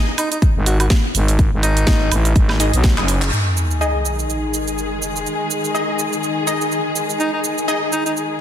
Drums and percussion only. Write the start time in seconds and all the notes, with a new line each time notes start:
0.18 open hi-hat, high woodblock, shaker
0.32 closed hi-hat, shaker
0.42 kick, closed hi-hat, shaker
0.66 open hi-hat, shaker
0.80 closed hi-hat, high woodblock, shaker
0.90 kick, snare, closed hi-hat, shaker
1.15 open hi-hat, shaker
1.28 closed hi-hat, shaker
1.39 kick, closed hi-hat, shaker
1.63 open hi-hat, shaker
1.77 closed hi-hat, shaker
1.87 kick, snare, closed hi-hat, shaker
2.12 open hi-hat, high woodblock, shaker
2.25 closed hi-hat, shaker
2.36 kick, closed hi-hat, shaker
2.49 snare, high woodblock
2.60 open hi-hat, shaker
2.73 closed hi-hat, shaker
2.84 kick, snare, closed hi-hat, shaker
2.98 clap, high woodblock
3.08 open hi-hat, shaker
3.22 clap, closed hi-hat, shaker
3.33 shaker
3.57 shaker
3.71 shaker
3.81 shaker
4.06 shaker
4.19 shaker
4.30 shaker
4.54 shaker
4.68 shaker
4.78 shaker
5.02 shaker
5.16 shaker
5.27 shaker
5.51 shaker
5.64 shaker
5.75 shaker
5.99 shaker
6.13 shaker
6.23 shaker
6.48 shaker
6.61 shaker
6.72 shaker
6.96 shaker
7.10 shaker
7.20 shaker
7.44 shaker
7.58 shaker
7.68 shaker
7.93 shaker
8.06 shaker
8.17 shaker